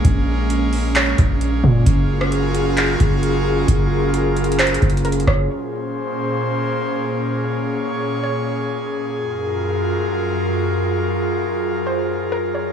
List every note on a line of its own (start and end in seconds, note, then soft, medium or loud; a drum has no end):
0.00 1.83 G#3 medium
0.00 1.83 A#3 medium
0.00 5.46 C#4 medium
0.05 1.14 A#1 loud
0.05 kick loud
0.05 closed hi-hat medium
0.50 closed hi-hat medium
0.73 open hi-hat medium
0.95 1.83 C#5 medium
0.95 clap loud
0.95 closed hi-hat medium
1.18 1.62 A#1 loud
1.18 kick medium
1.18 closed hi-hat medium
1.41 closed hi-hat medium
1.64 1.86 A#2 loud
1.64 kick loud
1.86 2.96 F#1 loud
1.86 5.47 F#3 medium
1.86 5.46 F4 medium
1.86 5.47 G#4 medium
1.86 5.47 A#4 medium
1.86 kick loud
1.86 closed hi-hat medium
2.21 cross-stick loud
2.32 closed hi-hat medium
2.55 closed hi-hat medium
2.77 clap loud
2.77 closed hi-hat medium
3.00 3.66 F#1 loud
3.00 kick medium
3.00 closed hi-hat medium
3.23 closed hi-hat medium
3.68 4.78 F#1 loud
3.68 kick loud
3.68 closed hi-hat medium
4.14 closed hi-hat medium
4.37 closed hi-hat soft
4.44 closed hi-hat soft
4.52 closed hi-hat medium
4.59 5.02 C5 medium
4.59 clap loud
4.59 closed hi-hat medium
4.67 closed hi-hat medium
4.74 closed hi-hat medium
4.82 5.26 F#1 loud
4.82 kick medium
4.82 closed hi-hat soft
4.90 closed hi-hat soft
4.97 closed hi-hat medium
5.05 5.26 A#4 medium
5.05 closed hi-hat medium
5.12 closed hi-hat medium
5.20 closed hi-hat medium
5.27 5.49 F#1 loud
5.27 5.49 C#5 medium
5.27 kick loud
5.27 cross-stick loud
5.50 9.10 A#2 medium
5.50 9.10 A#3 medium
5.50 9.10 C#4 medium
5.50 12.72 G#4 medium
5.50 7.30 C5 medium
7.32 9.12 C#5 medium
8.23 9.10 C#5 medium
9.14 12.72 F#2 medium
9.14 12.72 F#3 medium
9.14 12.72 F4 medium
9.14 12.72 A#4 medium
11.87 12.29 C5 medium
12.32 12.54 A#4 medium
12.55 12.72 C#5 medium